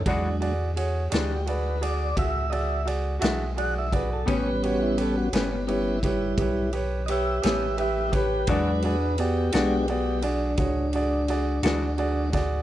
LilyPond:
<<
  \new Staff \with { instrumentName = "Grand piano" } { \time 12/8 \key a \major \tempo 4. = 57 <fis' gis' d''>8 <fis' gis' d''>8 <fis' gis' cis''>8 <fis' gis' d''>8 <fis' gis' d''>8 <fis' gis' d''>8 <fis' gis' e''>8 <fis' gis' d''>8 <fis' gis' d''>8 <fis' gis' e''>8 <fis' gis' d''>8 <fis' gis' d''>8 | <g' b' cis''>8 <g' b' cis''>8 <g' b' cis''>8 <g' b' cis''>8 <g' b' cis''>8 <g' b' cis''>8 <g' b' cis''>8 <g' b' cis''>8 <g' b' cis''>8 <g' b' cis''>8 <g' b' e''>8 <g' b' cis''>8 | <fis' gis' d''>8 <fis' gis' d''>8 <fis' gis' d''>8 <fis' gis' d''>8 <fis' gis' d''>8 <fis' gis' d''>8 <fis' gis' cis''>8 <fis' gis' d''>8 <fis' gis' d''>8 <fis' gis' d''>8 <fis' gis' d''>8 <fis' gis' d''>8 | }
  \new Staff \with { instrumentName = "Tonewheel organ" } { \time 12/8 \key a \major r4. g'8 b'8 d''8 e''8 <dis'' e''>8 r4 fis''16 e''16 b'16 a'16 | cis''16 b'16 fis'16 e'16 a'16 fis'16 cis'16 b16 e'8 <g e'>4 r8 <g' dis'' e''>8 <g' e''>8 <g' e''>8 <g' b'>8 | b'8 <d' b'>8 <b g'>8 <b g'>8 <b g'>8 d'2. r8 | }
  \new Staff \with { instrumentName = "Tonewheel organ" } { \time 12/8 \key a \major <fis gis d'>8 r1 r4. | <g b cis'>4. r8 <g b cis'>8 r2. r8 | <fis gis d'>8 r4 <gis d' fis'>8 r1 | }
  \new Staff \with { instrumentName = "Clean electric guitar" } { \time 12/8 \key a \major <e gis d' fis'>8 r4 <e gis d' fis'>8 r2 r8 <e gis d' fis'>8 r4 | <a, g b cis'>8 r4 <a, g b cis'>8 r2 r8 <a, g b cis'>8 r4 | <e gis d' fis'>8 r4 <e gis d' fis'>8 r2 r8 <e gis d' fis'>8 r4 | }
  \new Staff \with { instrumentName = "Sub bass" } { \clef bass \time 12/8 \key a \major e,4. d,4. cis,4. b,,4. | a,,4. g,,4. b,,4. a,,4. | e,4. b,,4. cis,4. d,4. | }
  \new DrumStaff \with { instrumentName = "Drums" } \drummode { \time 12/8 <bd cymr>8 cymr8 cymr8 <cymr sn>8 cymr8 cymr8 <bd cymr>8 cymr8 cymr8 <cymr sn>8 cymr8 <bd cymr>8 | <bd cymr>8 cymr8 cymr8 <cymr sn>8 cymr8 <bd cymr>8 <bd cymr>8 cymr8 cymr8 <cymr sn>8 cymr8 <bd cymr>8 | <bd cymr>8 cymr8 cymr8 <cymr sn>8 cymr8 cymr8 <bd cymr>8 cymr8 cymr8 <cymr sn>8 cymr8 <bd cymr sn>8 | }
>>